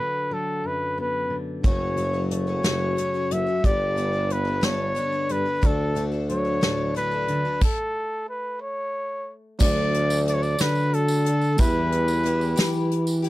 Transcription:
Already playing: D3 F#3 D4 B4
0.31 F#3 A4
0.64 F#2 B4
0.98 B3 B4
1.30 D3
1.63 F#1 F#2 C#3 F#3 A3 C#4 F#4 C#5, kick, closed hi-hat
1.97 F#3 A3 C#4, closed hi-hat
2.01 F#4
2.13 F#3 A3 C#4 F#4
2.31 A3 C#5, closed hi-hat
2.47 F#3 A3 C#4 F#4
2.63 F#1 F#2 C#3 F#3 A3 C#4 F#4, snare, closed hi-hat
2.97 F#3 A3 C#4 F#4, closed hi-hat
3.14 F#3 A3 C#4 F#4
3.31 F#1 F#3 E5, closed hi-hat
3.47 F#3 A3 C#4 F#4
3.64 G1 G2 G3 B3 D4 G4 A4 D5, kick, closed hi-hat
3.96 D3 G3 B3 D4 A4, closed hi-hat
4.13 B3 D4 A4
4.30 B3 B4, closed hi-hat
4.45 B3 D4 A4
4.61 G1 D3 G3 B3 D4 A4 C#5, snare, closed hi-hat
4.95 G3 B3 D4 A4, closed hi-hat
5.13 B3 D4 A4
5.29 G2 D3 B4, closed hi-hat
5.45 B3 D4 A4
5.62 D2 D3 F#3 A3 D4 F#4 A4, kick, closed hi-hat
5.66 A4
5.95 D3 F#3 A3 D4 A4, closed hi-hat
6.12 A3 D4 A4
6.29 F#3 C#5, closed hi-hat
6.45 A3 D4 A4
6.61 D2 A2 D3 F#3 A3 D4 A4, snare, closed hi-hat
6.95 F#3 A3 D4 A4 B4, closed hi-hat
7.11 A3 D4 A4
7.28 D3, closed hi-hat
7.45 A3 D4 A4
7.61 A4, kick, crash
8.30 B4
8.62 C#5
9.59 D2 D3 F#3 A3 D4 A4 D5, kick, crash, tambourine
9.94 closed hi-hat
10.10 tambourine
10.26 F#3 A3 D4 A4 D5, closed hi-hat
10.34 C#5
10.42 D5, tambourine
10.59 D3 F#3 A3 D4 A4 B4, snare, closed hi-hat, tambourine
10.75 tambourine
10.93 A4, closed hi-hat
11.08 tambourine
11.24 A3 D4 A4, closed hi-hat
11.41 tambourine
11.57 E2 E3 G3 B3 E4 G4 B4 E5, kick, closed hi-hat, tambourine
11.92 closed hi-hat
12.08 tambourine
12.23 E3 B3 E4 G4, closed hi-hat
12.41 tambourine
12.56 E3 B3 E4 G4, snare, closed hi-hat, tambourine
12.74 tambourine
12.91 closed hi-hat
13.07 tambourine
13.22 B3 E4 G4, closed hi-hat

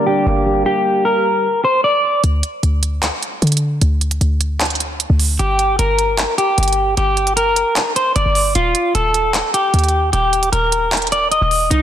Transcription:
Already playing: D3 G3 A#3 D4 G4 D5
0.07 D4 G4
0.26 G1 A#3
0.46 G3
0.66 G4
1.05 A#4
1.64 C5
1.84 D5
2.24 D2, closed hi-hat
2.43 closed hi-hat
2.63 D2, closed hi-hat
2.83 closed hi-hat
3.03 clap, closed hi-hat
3.23 closed hi-hat
3.42 D3, closed hi-hat
3.47 closed hi-hat
3.52 closed hi-hat
3.57 closed hi-hat
3.82 D2, closed hi-hat
4.01 closed hi-hat
4.11 closed hi-hat
4.21 D2, closed hi-hat
4.41 closed hi-hat
4.60 clap, closed hi-hat
4.65 closed hi-hat
4.70 closed hi-hat
4.75 closed hi-hat
4.80 closed hi-hat
5.00 closed hi-hat
5.10 D2
5.20 open hi-hat
5.39 G1 G4, closed hi-hat
5.59 closed hi-hat
5.79 G1 A#4, closed hi-hat
5.99 closed hi-hat
6.18 clap, closed hi-hat
6.38 G4, closed hi-hat
6.58 G1, closed hi-hat
6.63 closed hi-hat
6.68 closed hi-hat
6.73 closed hi-hat
6.97 G1 G4, closed hi-hat
7.17 closed hi-hat
7.27 closed hi-hat
7.37 A#4, closed hi-hat
7.56 closed hi-hat
7.76 clap, closed hi-hat
7.96 C5, closed hi-hat
8.16 G1 D5, closed hi-hat
8.26 G1
8.35 open hi-hat
8.55 D#1 F4, closed hi-hat
8.75 closed hi-hat
8.95 D#1 A4, closed hi-hat
9.14 closed hi-hat
9.34 clap, closed hi-hat
9.54 G4, closed hi-hat
9.74 D#2, closed hi-hat
9.79 closed hi-hat
9.84 closed hi-hat
9.89 closed hi-hat
10.13 D#1 G4, closed hi-hat
10.33 closed hi-hat
10.43 closed hi-hat
10.52 D#1 A#4, closed hi-hat
10.72 closed hi-hat
10.92 clap, closed hi-hat
10.97 closed hi-hat
11.02 closed hi-hat
11.07 closed hi-hat
11.12 D5, closed hi-hat
11.31 D#5, closed hi-hat
11.41 D#1
11.51 open hi-hat
11.71 C2 D#4, closed hi-hat

